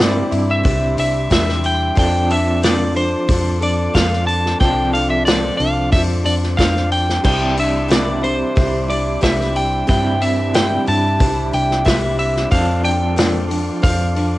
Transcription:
Already playing: picked electric bass G2, clean electric guitar C3 G3 C4 D4 E4, tonewheel organ G4 E5 C6 D6, electric slide guitar D5
0.00 steel-string acoustic guitar C3 G3 C4 D4 E4, snare
0.31 picked electric bass G2, steel-string acoustic guitar C4 D4 E4, open hi-hat
0.51 electric slide guitar E5
0.63 picked electric bass C2, steel-string acoustic guitar G3 C4 D4 E4, kick, open hi-hat
0.97 picked electric bass C2, steel-string acoustic guitar C4 D4 E4, electric slide guitar E5, open hi-hat
1.30 picked electric bass E2, steel-string acoustic guitar C3 G3 C4 D4 E4, electric slide guitar E5, kick, snare, open hi-hat
1.49 snare
1.64 electric slide guitar G5, open hi-hat
1.95 picked electric bass F2, steel-string acoustic guitar F3 C4 D4 A4, tonewheel organ F4 A4, electric slide guitar G5, kick, open hi-hat
2.30 steel-string acoustic guitar C4 D4 A4, electric slide guitar E5, open hi-hat
2.62 steel-string acoustic guitar F3 C4 D4 A4, electric slide guitar D5, snare, open hi-hat
2.95 steel-string acoustic guitar C4 D4 A4, electric slide guitar C5, open hi-hat
3.28 picked electric bass F2, steel-string acoustic guitar F3 C4 D4 A4, kick, open hi-hat
3.60 steel-string acoustic guitar C4 D4 A4, electric slide guitar D5, open hi-hat
3.94 picked electric bass F2, steel-string acoustic guitar F3 C4 D4 A4, electric slide guitar F5, kick, snare, open hi-hat
4.13 snare
4.27 electric slide guitar A5, open hi-hat
4.46 snare
4.60 picked electric bass C2, steel-string acoustic guitar F3 C4 D4 A4, electric slide guitar G5, kick, open hi-hat
4.93 steel-string acoustic guitar C4 D4 A4, electric slide guitar F5, open hi-hat
5.10 electric slide guitar E5
5.25 steel-string acoustic guitar F3 C4 D4 A4, electric slide guitar D5, snare, open hi-hat
5.57 picked electric bass C2, steel-string acoustic guitar D4 A4, electric slide guitar F5, open hi-hat
5.62 steel-string acoustic guitar C4
5.92 picked electric bass F2, steel-string acoustic guitar F3 C4 D4 A4, electric slide guitar E5, kick, open hi-hat
6.24 picked electric bass F2, steel-string acoustic guitar C4 D4 A4, electric slide guitar D5, open hi-hat
6.43 snare
6.57 picked electric bass F2, steel-string acoustic guitar F3 C4 D4 A4, electric slide guitar F5, kick, snare, open hi-hat
6.77 snare
6.92 electric slide guitar G5, open hi-hat
7.09 snare
7.23 picked electric bass C2, steel-string acoustic guitar C3 G3 C4 D4 E4, tonewheel organ G4 E5 D6, electric slide guitar G5, kick, crash
7.56 steel-string acoustic guitar C4 D4 E4, electric slide guitar E5, open hi-hat
7.88 steel-string acoustic guitar C3 G3 C4 D4 E4, electric slide guitar D5, snare, open hi-hat
8.21 steel-string acoustic guitar C4 D4 E4, electric slide guitar C5, open hi-hat
8.56 picked electric bass C2, steel-string acoustic guitar G3 C4 D4 E4, kick, open hi-hat
8.88 steel-string acoustic guitar C4 D4 E4, electric slide guitar D5, open hi-hat
9.21 picked electric bass C2, steel-string acoustic guitar C3 G3 C4 D4 E4, electric slide guitar E5, kick, snare, open hi-hat
9.41 snare
9.56 electric slide guitar G5, open hi-hat
9.87 picked electric bass G2, steel-string acoustic guitar C3 G3 C4 D4 E4, electric slide guitar G5, tonewheel organ B5, kick, open hi-hat
10.21 steel-string acoustic guitar C4 D4 E4, electric slide guitar E5, open hi-hat
10.54 steel-string acoustic guitar C3 G3 C4 D4 E4, electric slide guitar G5, snare, open hi-hat
10.86 picked electric bass G2, steel-string acoustic guitar C4 D4 E4, electric slide guitar A5, open hi-hat
11.19 picked electric bass C2, steel-string acoustic guitar G3 C4 D4 E4, kick, open hi-hat
11.51 picked electric bass C2, steel-string acoustic guitar C4 D4 E4, electric slide guitar G5, open hi-hat
11.71 snare
11.85 picked electric bass C2, steel-string acoustic guitar C3 G3 C4 D4 E4, electric slide guitar E5, kick, snare, open hi-hat
12.19 electric slide guitar E5, open hi-hat
12.37 snare
12.51 picked electric bass F2, steel-string acoustic guitar F3 C4 D4 A4, tonewheel organ A4 F5 C6, electric slide guitar F5, kick, open hi-hat
12.83 steel-string acoustic guitar C4 D4 A4, electric slide guitar G5, open hi-hat
13.16 steel-string acoustic guitar F3 C4 D4 A4, snare, open hi-hat
13.48 steel-string acoustic guitar C4 D4 A4, open hi-hat
13.82 picked electric bass F2, steel-string acoustic guitar F3 C4 D4 A4, electric slide guitar F5, kick, open hi-hat
14.15 steel-string acoustic guitar C4 D4 A4, open hi-hat

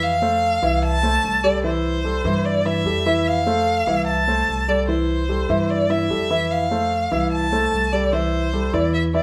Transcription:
Already playing: upright bass F2, grand piano E3 E4 E5
0.03 violin F5
0.22 grand piano A3 A4 C5
0.62 upright bass C2, grand piano E3 E4 E5
0.83 violin A5
1.03 grand piano A3 A4 C5
1.23 upright bass C2
1.44 grand piano G3 G4 A4, violin D5
1.64 grand piano E3 E4 E5, violin C5
2.04 grand piano G3 G4 A4
2.24 upright bass G2, grand piano E3 E4 E5
2.45 violin D5
2.65 grand piano E3 E4 E5, violin E5
2.85 upright bass F2, grand piano G3 G4 A4
3.06 grand piano E3 E4 E5
3.27 violin F5
3.46 grand piano A3 A4 C5
3.87 upright bass C2, grand piano E3 E4 E5
4.07 violin A5
4.28 grand piano A3 A4 C5
4.47 upright bass C2
4.68 grand piano G3 G4 A4, violin D5
4.88 grand piano E3 E4 E5, violin C5
5.29 grand piano G3 G4 A4
5.49 upright bass G2, grand piano E3 E4 E5
5.70 violin D5
5.90 grand piano E3 E4 E5, violin E5
6.10 upright bass F2, grand piano G3 G4 A4
6.30 grand piano E3 E4 E5
6.51 violin F5
6.71 grand piano A3 A4 C5
7.11 upright bass C2, grand piano E3 E4 E5
7.32 violin A5
7.52 grand piano A3 A4 C5
7.72 upright bass C2
7.93 grand piano G3 G4 A4, violin D5
8.12 grand piano E3 E4 E5, violin C5
8.53 grand piano G3 G4 A4
8.73 upright bass E2, grand piano E3 E4 E5, violin D5
8.94 violin E5
9.14 grand piano E3 E4 E5, violin D5

